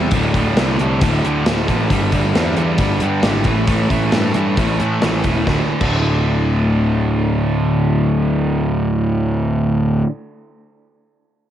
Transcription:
Already playing: overdriven electric guitar C3 G3 C4
0.11 picked electric bass D1, overdriven electric guitar D2 A2, kick, closed hi-hat
0.15 overdriven electric guitar D3
0.34 picked electric bass D1, overdriven electric guitar D2 A2 D3, kick, closed hi-hat
0.57 picked electric bass C2, overdriven electric guitar D2 A2 D3, snare, closed hi-hat
0.79 picked electric bass C2, overdriven electric guitar D2 A2 D3, closed hi-hat
1.01 picked electric bass D1, overdriven electric guitar D2 A2 D3, kick, closed hi-hat
1.24 overdriven electric guitar D2 A2 D3, picked electric bass D2, closed hi-hat
1.46 picked electric bass D1, overdriven electric guitar D2 A2 D3, snare, closed hi-hat
1.68 picked electric bass A1, overdriven electric guitar D2 A2 D3, kick, closed hi-hat
1.90 picked electric bass G1, overdriven electric guitar G2 D3 G3, kick, closed hi-hat
2.12 picked electric bass G1, overdriven electric guitar G2 D3 G3, kick, closed hi-hat
2.34 picked electric bass E2, overdriven electric guitar G2 D3 G3, snare, closed hi-hat
2.56 picked electric bass E2, overdriven electric guitar G2 D3 G3, closed hi-hat
2.78 picked electric bass G1, overdriven electric guitar G2 D3 G3, kick, closed hi-hat
3.00 overdriven electric guitar G2 D3 G3, picked electric bass G2, closed hi-hat
3.21 picked electric bass G#1, overdriven electric guitar G2 D3 G3, snare, closed hi-hat
3.44 picked electric bass A1, overdriven electric guitar A2 E3 A3, kick, closed hi-hat
3.67 picked electric bass A1, overdriven electric guitar A2 E3 A3, kick, closed hi-hat
3.89 picked electric bass A1, overdriven electric guitar A2 E3 A3, kick, closed hi-hat
4.12 picked electric bass G2, overdriven electric guitar A2 E3 A3, snare, closed hi-hat
4.34 picked electric bass G2, overdriven electric guitar A2 E3 A3, closed hi-hat
4.57 picked electric bass A1, overdriven electric guitar A2 E3 A3, kick, closed hi-hat
4.80 picked electric bass A2, overdriven electric guitar A2 E3 A3, closed hi-hat
5.01 picked electric bass A1, overdriven electric guitar A2 E3 A3, snare, closed hi-hat
5.24 picked electric bass E1, overdriven electric guitar A2 E3 A3, kick, closed hi-hat
5.46 picked electric bass D1, overdriven electric guitar D2 A2, kick, snare
5.51 overdriven electric guitar D3
5.81 picked electric bass D1, overdriven electric guitar D2 A2, kick, crash
5.85 overdriven electric guitar D3

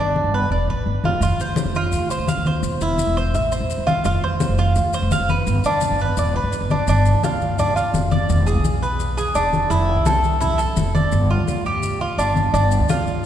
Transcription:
Already playing: upright bass G1
0.00 cuban tres D4
0.16 high conga
0.24 upright bass G1
0.34 cuban tres B4
0.50 upright bass E1, cuban tres D5, high conga
0.68 upright bass A1, cuban tres B4, high conga
0.86 upright bass G1, high conga
1.04 upright bass F1, cuban tres F4, high conga
1.21 upright bass F1, cuban tres F4, high conga, maracas
1.38 upright bass F1, cuban tres C5, high conga, maracas
1.56 high conga, maracas
1.65 upright bass F1
1.75 cuban tres F4, high conga, maracas
1.92 upright bass D2, high conga, maracas
2.10 cuban tres C5, high conga, maracas
2.18 upright bass F1
2.27 cuban tres F5, high conga, maracas
2.37 upright bass D#2
2.45 cuban tres C5, high conga, maracas
2.63 upright bass E1, high conga, maracas
2.80 upright bass E1, cuban tres E4, high conga, maracas
2.98 high conga, maracas
3.07 upright bass E1
3.17 cuban tres C5, maracas
3.34 upright bass A1, cuban tres E5, high conga, maracas
3.52 cuban tres C5, high conga, maracas
3.61 upright bass E1
3.70 high conga, maracas
3.78 upright bass C2
3.87 cuban tres F4, high conga, maracas
4.05 upright bass F1, cuban tres F4, high conga, maracas
4.23 upright bass F1, cuban tres C5, high conga
4.40 high conga, maracas
4.49 upright bass F1
4.58 cuban tres F4, high conga, maracas
4.75 upright bass D2, high conga, maracas
4.93 cuban tres C5, high conga, maracas
5.02 upright bass F1
5.11 cuban tres F5, high conga, maracas
5.20 upright bass F1
5.29 cuban tres B4, high conga, maracas
5.47 upright bass G1, high conga, maracas
5.64 upright bass G1, cuban tres D4, high conga, maracas
5.81 high conga, maracas
5.91 upright bass G1
5.99 cuban tres B4, maracas
6.17 upright bass E1, cuban tres D5, high conga, maracas
6.35 cuban tres B4, high conga
6.44 upright bass G1
6.52 high conga, maracas
6.61 upright bass G1
6.70 cuban tres D4, high conga, maracas
6.87 upright bass G1, cuban tres D4, high conga, maracas
7.05 high conga, maracas
7.14 upright bass D2
7.23 cuban tres F4, high conga, maracas
7.41 high conga, maracas
7.59 cuban tres D4, high conga, low conga, maracas
7.76 cuban tres F4, high conga, maracas
7.94 upright bass F1, high conga, maracas
8.11 cuban tres D5, high conga, maracas
8.29 upright bass E1, high conga, maracas
8.46 cuban tres G#4, high conga, maracas
8.56 upright bass B1
8.65 high conga, maracas
8.82 cuban tres B4, maracas
9.00 high conga, maracas
9.17 cuban tres G#4, high conga, maracas
9.35 upright bass E1, cuban tres D4, high conga, maracas
9.53 high conga, maracas
9.70 upright bass F1, cuban tres E4, high conga, maracas
9.88 high conga
9.96 upright bass C2
10.06 cuban tres A4, high conga, maracas
10.24 high conga, maracas
10.40 cuban tres E4, high conga, low conga, maracas
10.58 cuban tres A4, high conga, maracas
10.76 upright bass F1, high conga, maracas
10.95 cuban tres D5, high conga, maracas
11.12 upright bass G1, high conga, maracas
11.30 cuban tres F4, high conga
11.38 upright bass D2
11.48 high conga, maracas
11.66 cuban tres G4, maracas
11.83 high conga, maracas
12.00 cuban tres F4, high conga
12.18 upright bass G1, cuban tres D4, high conga, maracas
12.36 high conga, maracas
12.54 upright bass G1, cuban tres D4, high conga, maracas
12.71 high conga, maracas
12.80 upright bass D2
12.89 cuban tres F4, high conga, maracas
13.07 high conga, maracas

